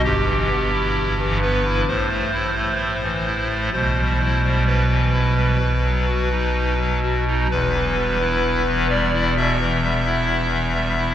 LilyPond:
<<
  \new Staff \with { instrumentName = "Pipe organ" } { \time 4/4 \key e \minor \tempo 4 = 65 g'4. b'8 c''2 | c''4 b'2~ b'8 r8 | b'4. d''8 e''2 | }
  \new Staff \with { instrumentName = "Pipe organ" } { \clef bass \time 4/4 \key e \minor << { g,16 e16 b16 e'8 e16 b16 e'16 a,16 a16 e'16 a8 e16 e'16 a16 | b,16 g16 e'16 g8 e16 e'16 g16 b,16 fis16 fis'16 dis'8 fis16 fis'16 dis'16 | e,16 e16 g16 e'8 e16 g16 e'16 b,16 e16 g16 e'8 e16 g16 e'16 | } \\ { g,,2 a,,2 | b,,2 b,,2 | e,,1 | } >> }
>>